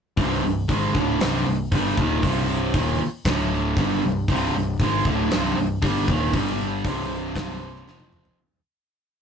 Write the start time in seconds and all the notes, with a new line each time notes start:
0.17 C1 C2 G2 C3, kick, open hi-hat
0.43 C1 C2 G2
0.68 G#1 G#2 D#3 G#3, kick, open hi-hat
0.93 D1 D2 A2 D3, kick
1.19 C1 C2 G2 C3, snare, open hi-hat
1.46 C1 C2 G2
1.72 G1 G2 D3 G3, kick, open hi-hat
1.97 D#1 D#2 A#2 D#3, kick
2.23 C1 C2 G2 C3, kick, open hi-hat
2.73 D#1 D#2 A#2 D#3, kick, open hi-hat
3.25 D1 D2 A2 D3, kick, snare, open hi-hat
3.76 G1 G2 D3 G3, kick, open hi-hat
4.03 C1 C2 G2
4.28 C1 C2 G2, kick, open hi-hat
4.32 C3
4.54 C1 C2 G2
4.79 G#1 G#2 D#3 G#3, kick, open hi-hat
5.05 D1 D2 A2 D3, kick
5.31 C1 C2 G2 C3, snare, open hi-hat
5.56 C1 C2 G2
5.82 G1 G2 D3 G3, kick, open hi-hat
6.08 D#1 D#2 A#2 D#3, kick
6.34 G1 G2 D3 G3, kick, open hi-hat
6.85 C1 C2 G2 C3, kick, open hi-hat
7.35 kick, snare, open hi-hat
7.75 snare
7.87 F1 F2 C3 F3, snare
8.00 high tom
8.13 mid tom
8.25 floor tom